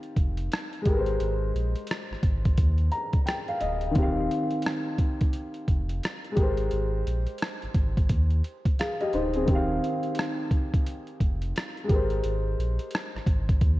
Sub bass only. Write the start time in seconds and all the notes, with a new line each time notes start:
0.17 F1
0.86 G#1
1.20 G#1
1.55 A#1
2.11 G#1
2.23 G#1
2.58 D#2
3.62 D1
3.96 D#1
5.68 F1
6.37 G#1
6.72 G#1
7.07 A#1
7.63 G#1
7.75 G#1
8.10 D#2
9.14 D1
9.48 D#1
11.21 F1
11.90 G#1
12.24 G#1
12.58 A#1
13.15 G#1
13.27 G#1
13.61 D#2